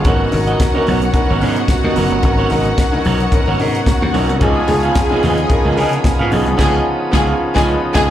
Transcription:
Already playing: B3 C#6
0.04 G#1 F#3 B3 C#4 D#4 F#4 A#4 C#5 F#5 A#5, kick, closed hi-hat
0.31 G#1 F#3 B3 C#4 D#4 A#4, muted clean electric guitar stroke, open hi-hat, high conga
0.47 B3 F#4 A#4 D#5, closed hi-hat
0.60 muted clean electric guitar stroke, kick, snare, closed hi-hat, muted conga
0.74 F#3 B3 C#4 D#4 F#4 A#4 C#5, high conga
0.87 B1 B3 F#4 A#4 C#5, open hi-hat, high conga, low conga
1.02 muted clean electric guitar stroke, closed hi-hat
1.13 F#3 B3 C#4 D#4 A#4, muted clean electric guitar stroke, kick, closed hi-hat, low conga
1.30 G#1 B3 F#4 A#4 C#5
1.40 G#2 F#3 B3 C#4 D#4 F#4 A#4 C#5, open hi-hat, high conga
1.56 muted clean electric guitar stroke, closed hi-hat
1.68 muted clean electric guitar stroke, kick, snare, closed hi-hat, high conga
1.84 D#2 B3 F#4 A#4 D#5
1.94 F#1 F#3 B3 C#4 D#4 F#4 A#4 C#5, open hi-hat, low conga
2.11 G1, muted clean electric guitar stroke, closed hi-hat
2.22 G#1 F#3 B3 C#4 D#4 A#4, muted clean electric guitar stroke, kick, closed hi-hat, muted conga
2.38 B3 F#4 A#4 C#5
2.49 G#1 F#3 B3 C#4 D#4 F#4 A#4 D#5, open hi-hat, high conga
2.65 muted clean electric guitar stroke, closed hi-hat
2.78 kick, snare, closed hi-hat, muted conga
2.92 F#3 B3 C#4 D#4 A#4, muted clean electric guitar stroke, muted conga, high conga
3.05 B1 B3 F#4 A#4 C#5, open hi-hat, high conga, low conga
3.20 muted clean electric guitar stroke, closed hi-hat
3.31 F#3 B3 C#4 D#4 A#4, muted clean electric guitar stroke, kick, closed hi-hat, low conga
3.48 G#1 B3 F#4 A#4 C#5
3.59 G#2 F#3 B3 C#4 D#4 A#4, muted clean electric guitar stroke, open hi-hat, high conga
3.75 muted clean electric guitar stroke, closed hi-hat
3.86 muted clean electric guitar stroke, kick, snare, closed hi-hat, muted conga, high conga
4.02 D#2, muted clean electric guitar stroke
4.13 B1 F#3 B3 C#4 D#4 F#4 A#4 C#5, open hi-hat, low conga
4.29 C2, muted clean electric guitar stroke, closed hi-hat
4.39 C#2 F3 B3 C#4 D#4 F4 G#4 C#5 D#5 F5 G#5 B5 D#6, kick, closed hi-hat
4.67 C#2 F3 B3 C#4 D#4 G#4, muted clean electric guitar stroke, open hi-hat, high conga
4.83 B3 F4 G#4 F5, closed hi-hat
4.95 muted clean electric guitar stroke, kick, snare, closed hi-hat
5.10 F3 B3 C#4 D#4 F4 G#4 D#5, high conga
5.23 D#2 B3 F4 G#4 D#5, snare, open hi-hat, high conga, low conga
5.38 muted clean electric guitar stroke, closed hi-hat
5.49 F3 B3 C#4 D#4 A#4, muted clean electric guitar stroke, kick, closed hi-hat, muted conga, low conga
5.65 C#2 B3 F4 G#4 D#5
5.75 C#3 F3 B3 C#4 D#4 F4 G#4 D#5, open hi-hat, high conga
5.93 muted clean electric guitar stroke, closed hi-hat
6.04 muted clean electric guitar stroke, kick, snare, closed hi-hat, muted conga, high conga
6.19 G#2 B3 F4 G#4 F5, muted conga
6.30 B1 F3 B3 C#4 D#4 F4 G#4 D#5, open hi-hat, low conga
6.46 C2, muted clean electric guitar stroke, closed hi-hat
6.57 C#2 F3 B3 C#4 D#4 F4 G#4 D#5 G#5, kick, snare, crash
7.11 C#2 F3 B3 C#4 D#4 F4 G#4 F5 G#5, kick, snare
7.54 C#2 F3 B3 C#4 D#4 F4 G#4 B4 D#5 G#5, kick, snare
7.93 C#2 F3 B3 C#4 D#4 F4 G#4 D#5 G#5, kick, snare

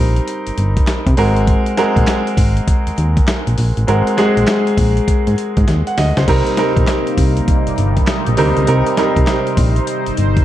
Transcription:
Already playing: A#1 G3 C4 D#4 A#4
0.16 closed hi-hat
0.28 closed hi-hat
0.47 G1, closed hi-hat
0.58 G1, closed hi-hat
0.77 kick, closed hi-hat
0.87 snare, clap, closed hi-hat
1.06 C3, kick, closed hi-hat
1.17 G#1 G#3 C4 F#4 A#4, open hi-hat
1.36 closed hi-hat
1.47 kick, closed hi-hat
1.66 closed hi-hat
1.77 G#3 C4 F#4 A#4, snare, closed hi-hat
1.96 A#1, kick, closed hi-hat
2.07 snare, clap, closed hi-hat
2.27 closed hi-hat
2.37 G#1, kick, open hi-hat
2.57 closed hi-hat
2.68 kick, closed hi-hat
2.87 D#2, closed hi-hat
2.98 D#2, closed hi-hat
3.17 kick, closed hi-hat
3.27 snare, clap, closed hi-hat
3.47 A#1, closed hi-hat
3.58 A#1, open hi-hat
3.77 A1, closed hi-hat
3.87 G#1 G#3 C4 F#4 A#4, closed hi-hat
4.07 closed hi-hat
4.17 G#3 C4 F#4 G#4, snare, closed hi-hat
4.37 A#1, closed hi-hat
4.47 snare, clap, closed hi-hat
4.67 closed hi-hat
4.77 A#1, kick, open hi-hat
4.97 closed hi-hat
5.08 kick, closed hi-hat
5.27 G#2, closed hi-hat
5.38 closed hi-hat
5.57 G#2, kick, closed hi-hat
5.68 D#2, snare, closed hi-hat
5.87 F#5, closed hi-hat
5.98 D2 D#5, snare, open hi-hat
6.17 C#2 C5, snare, closed hi-hat
6.28 C2 C3 G3 A#3 C4 D#4 A#4, kick, closed hi-hat, crash
6.46 closed hi-hat
6.57 G3 C4 D#4 A#4, snare, closed hi-hat
6.77 A#1, kick, closed hi-hat
6.87 snare, clap, closed hi-hat
7.07 closed hi-hat
7.17 C2, kick, open hi-hat
7.37 closed hi-hat
7.48 kick, closed hi-hat
7.67 G1, closed hi-hat
7.78 G1, closed hi-hat
7.97 kick, closed hi-hat
8.07 snare, clap, closed hi-hat
8.26 A#1, closed hi-hat
8.37 D2 G3 C4 D#4 A#4, open hi-hat
8.57 C#2, closed hi-hat
8.67 C2 G3 C4 D#4 A#4 C5, closed hi-hat
8.86 closed hi-hat
8.97 G3 C4 D#4 A#4, snare, closed hi-hat
9.16 C2, kick, closed hi-hat
9.27 snare, clap, closed hi-hat
9.47 closed hi-hat
9.57 A#1, kick, open hi-hat
9.76 closed hi-hat
9.87 closed hi-hat
10.06 G1, closed hi-hat
10.17 G1, closed hi-hat
10.37 kick, closed hi-hat

